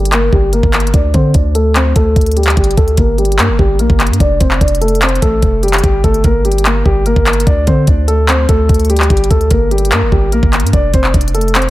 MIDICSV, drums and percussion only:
0, 0, Header, 1, 2, 480
1, 0, Start_track
1, 0, Key_signature, -2, "minor"
1, 0, Tempo, 408163
1, 1103, Time_signature, 4, 2, 24, 8
1, 13759, End_track
2, 0, Start_track
2, 0, Title_t, "Drums"
2, 64, Note_on_c, 9, 42, 75
2, 143, Note_on_c, 9, 39, 114
2, 146, Note_off_c, 9, 42, 0
2, 146, Note_on_c, 9, 42, 72
2, 261, Note_off_c, 9, 39, 0
2, 264, Note_off_c, 9, 42, 0
2, 383, Note_on_c, 9, 36, 88
2, 501, Note_off_c, 9, 36, 0
2, 621, Note_on_c, 9, 42, 58
2, 739, Note_off_c, 9, 42, 0
2, 744, Note_on_c, 9, 36, 93
2, 862, Note_off_c, 9, 36, 0
2, 862, Note_on_c, 9, 42, 49
2, 863, Note_on_c, 9, 39, 97
2, 942, Note_off_c, 9, 42, 0
2, 942, Note_on_c, 9, 42, 66
2, 980, Note_off_c, 9, 39, 0
2, 1023, Note_off_c, 9, 42, 0
2, 1023, Note_on_c, 9, 42, 83
2, 1102, Note_off_c, 9, 42, 0
2, 1102, Note_on_c, 9, 42, 76
2, 1103, Note_on_c, 9, 36, 124
2, 1220, Note_off_c, 9, 42, 0
2, 1221, Note_off_c, 9, 36, 0
2, 1340, Note_on_c, 9, 42, 73
2, 1343, Note_on_c, 9, 36, 89
2, 1458, Note_off_c, 9, 42, 0
2, 1461, Note_off_c, 9, 36, 0
2, 1579, Note_on_c, 9, 42, 77
2, 1583, Note_on_c, 9, 36, 95
2, 1696, Note_off_c, 9, 42, 0
2, 1700, Note_off_c, 9, 36, 0
2, 1823, Note_on_c, 9, 42, 71
2, 1941, Note_off_c, 9, 42, 0
2, 2063, Note_on_c, 9, 39, 111
2, 2066, Note_on_c, 9, 42, 72
2, 2180, Note_off_c, 9, 39, 0
2, 2183, Note_off_c, 9, 42, 0
2, 2302, Note_on_c, 9, 42, 90
2, 2303, Note_on_c, 9, 36, 88
2, 2419, Note_off_c, 9, 42, 0
2, 2420, Note_off_c, 9, 36, 0
2, 2542, Note_on_c, 9, 36, 97
2, 2542, Note_on_c, 9, 42, 52
2, 2602, Note_off_c, 9, 42, 0
2, 2602, Note_on_c, 9, 42, 53
2, 2660, Note_off_c, 9, 36, 0
2, 2663, Note_off_c, 9, 42, 0
2, 2663, Note_on_c, 9, 42, 52
2, 2723, Note_off_c, 9, 42, 0
2, 2723, Note_on_c, 9, 42, 53
2, 2783, Note_off_c, 9, 42, 0
2, 2783, Note_on_c, 9, 42, 70
2, 2862, Note_off_c, 9, 42, 0
2, 2862, Note_on_c, 9, 42, 68
2, 2902, Note_on_c, 9, 39, 96
2, 2942, Note_off_c, 9, 42, 0
2, 2942, Note_on_c, 9, 42, 66
2, 3020, Note_off_c, 9, 39, 0
2, 3022, Note_off_c, 9, 42, 0
2, 3022, Note_on_c, 9, 42, 69
2, 3023, Note_on_c, 9, 36, 121
2, 3103, Note_off_c, 9, 42, 0
2, 3103, Note_on_c, 9, 42, 68
2, 3140, Note_off_c, 9, 36, 0
2, 3183, Note_off_c, 9, 42, 0
2, 3183, Note_on_c, 9, 42, 67
2, 3263, Note_off_c, 9, 42, 0
2, 3263, Note_on_c, 9, 36, 90
2, 3263, Note_on_c, 9, 42, 68
2, 3380, Note_off_c, 9, 42, 0
2, 3381, Note_off_c, 9, 36, 0
2, 3383, Note_on_c, 9, 42, 42
2, 3497, Note_off_c, 9, 42, 0
2, 3497, Note_on_c, 9, 42, 82
2, 3502, Note_on_c, 9, 36, 92
2, 3615, Note_off_c, 9, 42, 0
2, 3620, Note_off_c, 9, 36, 0
2, 3743, Note_on_c, 9, 42, 45
2, 3823, Note_off_c, 9, 42, 0
2, 3823, Note_on_c, 9, 42, 59
2, 3903, Note_off_c, 9, 42, 0
2, 3903, Note_on_c, 9, 42, 73
2, 3983, Note_on_c, 9, 39, 114
2, 3986, Note_off_c, 9, 42, 0
2, 3986, Note_on_c, 9, 42, 72
2, 4101, Note_off_c, 9, 39, 0
2, 4103, Note_off_c, 9, 42, 0
2, 4222, Note_on_c, 9, 36, 86
2, 4340, Note_off_c, 9, 36, 0
2, 4460, Note_on_c, 9, 42, 59
2, 4577, Note_off_c, 9, 42, 0
2, 4583, Note_on_c, 9, 36, 94
2, 4701, Note_off_c, 9, 36, 0
2, 4703, Note_on_c, 9, 39, 97
2, 4703, Note_on_c, 9, 42, 52
2, 4782, Note_off_c, 9, 42, 0
2, 4782, Note_on_c, 9, 42, 70
2, 4821, Note_off_c, 9, 39, 0
2, 4862, Note_off_c, 9, 42, 0
2, 4862, Note_on_c, 9, 42, 84
2, 4942, Note_off_c, 9, 42, 0
2, 4942, Note_on_c, 9, 36, 119
2, 4942, Note_on_c, 9, 42, 76
2, 5060, Note_off_c, 9, 36, 0
2, 5060, Note_off_c, 9, 42, 0
2, 5180, Note_on_c, 9, 42, 71
2, 5183, Note_on_c, 9, 36, 90
2, 5298, Note_off_c, 9, 42, 0
2, 5300, Note_off_c, 9, 36, 0
2, 5302, Note_on_c, 9, 39, 67
2, 5420, Note_off_c, 9, 39, 0
2, 5422, Note_on_c, 9, 36, 94
2, 5423, Note_on_c, 9, 42, 78
2, 5503, Note_off_c, 9, 42, 0
2, 5503, Note_on_c, 9, 42, 75
2, 5540, Note_off_c, 9, 36, 0
2, 5583, Note_off_c, 9, 42, 0
2, 5583, Note_on_c, 9, 42, 66
2, 5663, Note_off_c, 9, 42, 0
2, 5663, Note_on_c, 9, 42, 61
2, 5742, Note_off_c, 9, 42, 0
2, 5742, Note_on_c, 9, 42, 55
2, 5822, Note_off_c, 9, 42, 0
2, 5822, Note_on_c, 9, 42, 46
2, 5902, Note_off_c, 9, 42, 0
2, 5902, Note_on_c, 9, 39, 112
2, 5902, Note_on_c, 9, 42, 61
2, 5982, Note_off_c, 9, 42, 0
2, 5982, Note_on_c, 9, 42, 61
2, 6019, Note_off_c, 9, 39, 0
2, 6062, Note_off_c, 9, 42, 0
2, 6062, Note_on_c, 9, 42, 59
2, 6142, Note_off_c, 9, 42, 0
2, 6142, Note_on_c, 9, 36, 85
2, 6142, Note_on_c, 9, 42, 90
2, 6259, Note_off_c, 9, 42, 0
2, 6260, Note_off_c, 9, 36, 0
2, 6379, Note_on_c, 9, 42, 59
2, 6382, Note_on_c, 9, 36, 98
2, 6497, Note_off_c, 9, 42, 0
2, 6499, Note_off_c, 9, 36, 0
2, 6620, Note_on_c, 9, 46, 89
2, 6622, Note_on_c, 9, 42, 50
2, 6683, Note_off_c, 9, 42, 0
2, 6683, Note_on_c, 9, 42, 61
2, 6737, Note_off_c, 9, 46, 0
2, 6742, Note_off_c, 9, 42, 0
2, 6742, Note_on_c, 9, 42, 74
2, 6743, Note_on_c, 9, 39, 93
2, 6803, Note_off_c, 9, 42, 0
2, 6803, Note_on_c, 9, 42, 87
2, 6861, Note_off_c, 9, 39, 0
2, 6863, Note_off_c, 9, 42, 0
2, 6863, Note_on_c, 9, 36, 124
2, 6863, Note_on_c, 9, 42, 76
2, 6980, Note_off_c, 9, 36, 0
2, 6981, Note_off_c, 9, 42, 0
2, 7103, Note_on_c, 9, 36, 89
2, 7103, Note_on_c, 9, 42, 66
2, 7221, Note_off_c, 9, 36, 0
2, 7221, Note_off_c, 9, 42, 0
2, 7223, Note_on_c, 9, 42, 40
2, 7338, Note_off_c, 9, 42, 0
2, 7338, Note_on_c, 9, 42, 83
2, 7342, Note_on_c, 9, 36, 96
2, 7456, Note_off_c, 9, 42, 0
2, 7460, Note_off_c, 9, 36, 0
2, 7583, Note_on_c, 9, 42, 44
2, 7663, Note_off_c, 9, 42, 0
2, 7663, Note_on_c, 9, 42, 60
2, 7743, Note_off_c, 9, 42, 0
2, 7743, Note_on_c, 9, 42, 73
2, 7823, Note_on_c, 9, 39, 111
2, 7826, Note_off_c, 9, 42, 0
2, 7826, Note_on_c, 9, 42, 71
2, 7941, Note_off_c, 9, 39, 0
2, 7943, Note_off_c, 9, 42, 0
2, 8062, Note_on_c, 9, 36, 90
2, 8180, Note_off_c, 9, 36, 0
2, 8300, Note_on_c, 9, 42, 62
2, 8418, Note_off_c, 9, 42, 0
2, 8424, Note_on_c, 9, 36, 97
2, 8541, Note_off_c, 9, 36, 0
2, 8543, Note_on_c, 9, 39, 97
2, 8543, Note_on_c, 9, 42, 50
2, 8623, Note_off_c, 9, 42, 0
2, 8623, Note_on_c, 9, 42, 69
2, 8661, Note_off_c, 9, 39, 0
2, 8703, Note_off_c, 9, 42, 0
2, 8703, Note_on_c, 9, 42, 87
2, 8783, Note_off_c, 9, 42, 0
2, 8783, Note_on_c, 9, 36, 123
2, 8783, Note_on_c, 9, 42, 77
2, 8900, Note_off_c, 9, 42, 0
2, 8901, Note_off_c, 9, 36, 0
2, 9021, Note_on_c, 9, 42, 72
2, 9023, Note_on_c, 9, 36, 89
2, 9139, Note_off_c, 9, 42, 0
2, 9141, Note_off_c, 9, 36, 0
2, 9259, Note_on_c, 9, 42, 78
2, 9263, Note_on_c, 9, 36, 95
2, 9376, Note_off_c, 9, 42, 0
2, 9380, Note_off_c, 9, 36, 0
2, 9503, Note_on_c, 9, 42, 74
2, 9621, Note_off_c, 9, 42, 0
2, 9743, Note_on_c, 9, 39, 111
2, 9745, Note_on_c, 9, 42, 72
2, 9860, Note_off_c, 9, 39, 0
2, 9863, Note_off_c, 9, 42, 0
2, 9982, Note_on_c, 9, 42, 91
2, 9983, Note_on_c, 9, 36, 84
2, 10100, Note_off_c, 9, 36, 0
2, 10100, Note_off_c, 9, 42, 0
2, 10223, Note_on_c, 9, 36, 92
2, 10223, Note_on_c, 9, 42, 51
2, 10283, Note_off_c, 9, 42, 0
2, 10283, Note_on_c, 9, 42, 50
2, 10340, Note_off_c, 9, 36, 0
2, 10343, Note_off_c, 9, 42, 0
2, 10343, Note_on_c, 9, 42, 53
2, 10404, Note_off_c, 9, 42, 0
2, 10404, Note_on_c, 9, 42, 51
2, 10463, Note_off_c, 9, 42, 0
2, 10463, Note_on_c, 9, 42, 71
2, 10543, Note_off_c, 9, 42, 0
2, 10543, Note_on_c, 9, 42, 71
2, 10583, Note_on_c, 9, 39, 97
2, 10623, Note_off_c, 9, 42, 0
2, 10623, Note_on_c, 9, 42, 71
2, 10701, Note_off_c, 9, 39, 0
2, 10703, Note_off_c, 9, 42, 0
2, 10703, Note_on_c, 9, 36, 121
2, 10703, Note_on_c, 9, 42, 70
2, 10783, Note_off_c, 9, 42, 0
2, 10783, Note_on_c, 9, 42, 70
2, 10821, Note_off_c, 9, 36, 0
2, 10863, Note_off_c, 9, 42, 0
2, 10863, Note_on_c, 9, 42, 68
2, 10944, Note_off_c, 9, 42, 0
2, 10944, Note_on_c, 9, 36, 89
2, 10944, Note_on_c, 9, 42, 69
2, 11061, Note_off_c, 9, 36, 0
2, 11061, Note_off_c, 9, 42, 0
2, 11064, Note_on_c, 9, 42, 41
2, 11178, Note_off_c, 9, 42, 0
2, 11178, Note_on_c, 9, 42, 87
2, 11183, Note_on_c, 9, 36, 97
2, 11296, Note_off_c, 9, 42, 0
2, 11300, Note_off_c, 9, 36, 0
2, 11423, Note_on_c, 9, 42, 45
2, 11503, Note_off_c, 9, 42, 0
2, 11503, Note_on_c, 9, 42, 59
2, 11583, Note_off_c, 9, 42, 0
2, 11583, Note_on_c, 9, 42, 75
2, 11664, Note_on_c, 9, 39, 111
2, 11666, Note_off_c, 9, 42, 0
2, 11666, Note_on_c, 9, 42, 72
2, 11781, Note_off_c, 9, 39, 0
2, 11784, Note_off_c, 9, 42, 0
2, 11903, Note_on_c, 9, 36, 87
2, 12020, Note_off_c, 9, 36, 0
2, 12140, Note_on_c, 9, 42, 58
2, 12258, Note_off_c, 9, 42, 0
2, 12264, Note_on_c, 9, 36, 97
2, 12382, Note_off_c, 9, 36, 0
2, 12383, Note_on_c, 9, 39, 97
2, 12383, Note_on_c, 9, 42, 51
2, 12463, Note_off_c, 9, 42, 0
2, 12463, Note_on_c, 9, 42, 71
2, 12501, Note_off_c, 9, 39, 0
2, 12543, Note_off_c, 9, 42, 0
2, 12543, Note_on_c, 9, 42, 86
2, 12622, Note_off_c, 9, 42, 0
2, 12622, Note_on_c, 9, 42, 76
2, 12623, Note_on_c, 9, 36, 123
2, 12739, Note_off_c, 9, 42, 0
2, 12740, Note_off_c, 9, 36, 0
2, 12860, Note_on_c, 9, 42, 71
2, 12863, Note_on_c, 9, 36, 91
2, 12978, Note_off_c, 9, 42, 0
2, 12981, Note_off_c, 9, 36, 0
2, 12982, Note_on_c, 9, 39, 66
2, 13100, Note_off_c, 9, 39, 0
2, 13102, Note_on_c, 9, 36, 96
2, 13102, Note_on_c, 9, 42, 81
2, 13182, Note_off_c, 9, 42, 0
2, 13182, Note_on_c, 9, 42, 73
2, 13220, Note_off_c, 9, 36, 0
2, 13263, Note_off_c, 9, 42, 0
2, 13263, Note_on_c, 9, 42, 67
2, 13342, Note_off_c, 9, 42, 0
2, 13342, Note_on_c, 9, 42, 60
2, 13422, Note_off_c, 9, 42, 0
2, 13422, Note_on_c, 9, 42, 53
2, 13502, Note_off_c, 9, 42, 0
2, 13502, Note_on_c, 9, 42, 47
2, 13582, Note_off_c, 9, 42, 0
2, 13582, Note_on_c, 9, 42, 61
2, 13583, Note_on_c, 9, 39, 112
2, 13663, Note_off_c, 9, 42, 0
2, 13663, Note_on_c, 9, 42, 59
2, 13700, Note_off_c, 9, 39, 0
2, 13759, Note_off_c, 9, 42, 0
2, 13759, End_track
0, 0, End_of_file